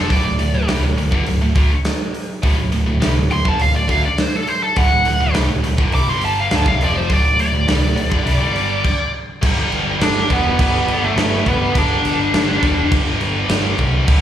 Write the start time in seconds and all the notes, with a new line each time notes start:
Already playing: A4
0.09 D1 D2 A2 D5, kick, open hi-hat
0.23 D1 D2 A2
0.38 D1 D2 A2, open hi-hat
0.54 D1 D2 A2
0.68 C2 C3 G3, snare, open hi-hat
0.83 D1 D2 A2
0.97 D1 D2 A2, open hi-hat
1.11 G1 G2 D3, kick
1.26 D1 D2 A2, open hi-hat
1.42 D1 D2 A2
1.55 D2 D3 A3, kick, open hi-hat
1.85 snare, open hi-hat
2.14 open hi-hat
2.43 D1 D2 A2, kick, open hi-hat
2.57 D1 D2 A2
2.72 D1 D2 A2, open hi-hat
2.86 D1 D2 A2
3.00 C2 C3 G3, snare, open hi-hat
3.15 D1 D2 A2
3.30 D1 D2 A2 C6, open hi-hat
3.45 G1 G2 D3 A5, kick
3.59 D1 D2 A2 F5, open hi-hat
3.74 D1 D2 A2 D5
3.88 D2 D3 A3 F5, kick, open hi-hat
4.05 D5
4.18 C5, snare, open hi-hat
4.36 A4
4.47 C5, open hi-hat
4.63 A4
4.76 D1 D2 A2 F#5, kick, open hi-hat
4.90 D1 D2 A2
5.05 D1 D2 A2, open hi-hat
5.20 D1 D2 A2
5.34 C2 C3 G3, snare, open hi-hat
5.48 D1 D2 A2
5.63 D1 D2 A2, open hi-hat
5.78 G1 G2 D3, kick
5.92 C2 C3 G3 D6, open hi-hat
6.08 G1 G2 D3 G3 C6
6.21 A5, open hi-hat
6.40 F5
6.51 D1 D2 A2, snare, open hi-hat
6.55 A5
6.66 C2 C3 G3 F5, kick
6.81 F1 F2 C3 F3 D5, open hi-hat
6.98 C5
7.10 D1 D2 A2 D5, kick, open hi-hat
7.24 D1 D2 A2
7.39 D1 D2 A2 D5, open hi-hat
7.52 D1 D2 A2
7.67 C2 C3 G3, snare, open hi-hat
7.81 D1 D2 A2
7.96 D1 D2 A2, open hi-hat
8.10 G1 G2 D3, kick
8.25 C2 C3 G3, open hi-hat
8.38 G1 G2 D3 G3
8.56 open hi-hat
8.84 kick, crash
9.42 G1 G2 D3 G3, kick, crash
9.71 G1, crash
10.00 G1 D4, snare, crash
10.28 E1 G2 D3 G3, kick, crash
10.33 B3
10.59 G1 B3, kick, crash
10.87 G1, crash
11.05 A3
11.16 G1, snare, crash
11.46 G1 B3, kick, crash
11.74 G1 G2 D3 G3 D4, kick, crash
12.04 G1, crash
12.33 G1, snare, crash
12.60 E1 G2 D3 G3, kick, crash
12.92 G1, kick, crash
13.20 G1, crash
13.49 G1, snare, crash
13.78 C2, kick, crash
14.08 D1 D2 A2 D3, kick, crash